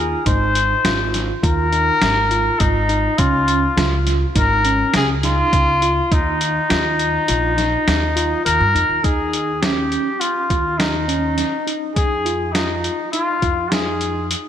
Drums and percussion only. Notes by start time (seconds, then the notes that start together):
0.26 kick, closed hi-hat
0.55 closed hi-hat
0.85 snare, closed hi-hat
1.14 snare, closed hi-hat
1.43 kick, closed hi-hat
1.73 closed hi-hat
2.02 snare, closed hi-hat
2.31 closed hi-hat
2.60 kick, closed hi-hat
2.89 closed hi-hat
3.18 kick, closed hi-hat
3.48 closed hi-hat
3.78 snare, closed hi-hat
4.07 snare, closed hi-hat
4.36 kick, snare, closed hi-hat
4.65 closed hi-hat
4.94 snare, closed hi-hat
5.23 snare, closed hi-hat
5.53 kick, closed hi-hat
5.82 closed hi-hat
6.12 kick, closed hi-hat
6.41 closed hi-hat
6.70 snare, closed hi-hat
6.99 closed hi-hat
7.28 closed hi-hat
7.58 snare, closed hi-hat
7.88 snare, closed hi-hat
8.17 closed hi-hat
8.46 closed hi-hat
8.76 closed hi-hat
9.04 kick, closed hi-hat
9.33 closed hi-hat
9.63 snare, closed hi-hat
9.92 closed hi-hat
10.21 closed hi-hat
10.50 kick, closed hi-hat
10.80 snare, closed hi-hat
11.09 closed hi-hat
11.38 snare, closed hi-hat
11.68 closed hi-hat
11.96 kick, closed hi-hat
12.26 closed hi-hat
12.55 snare, closed hi-hat
12.84 closed hi-hat
13.13 closed hi-hat
13.42 kick, closed hi-hat
13.72 snare, closed hi-hat
14.01 closed hi-hat
14.31 closed hi-hat